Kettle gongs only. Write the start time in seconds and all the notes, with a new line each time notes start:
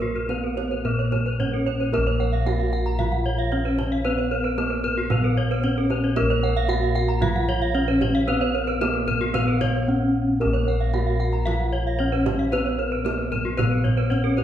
Already playing: A#1 A#4
0.29 B3
0.85 A#2
1.39 B3
1.93 A#4
1.98 A#1
2.46 B3
3.52 B3
4.05 B4
4.58 B3
5.11 A#2
5.64 B3
6.17 A#4
6.22 A#1
6.70 B3
7.75 B3
8.28 B4
8.81 B3
9.34 A#2
9.88 B3
10.40 A#4
10.45 A#1
10.94 B3
11.99 B3
12.53 B4
13.05 B3
13.59 A#2
14.12 B3